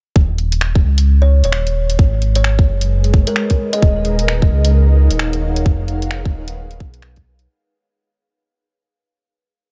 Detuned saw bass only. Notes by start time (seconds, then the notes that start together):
0.16 D#1
0.84 C#2
1.44 D#1
1.99 G#1
2.68 F#1
3.83 D#1
4.51 C#2
5.11 D#1
5.66 F1
6.34 D#1
6.80 B1
7.26 B1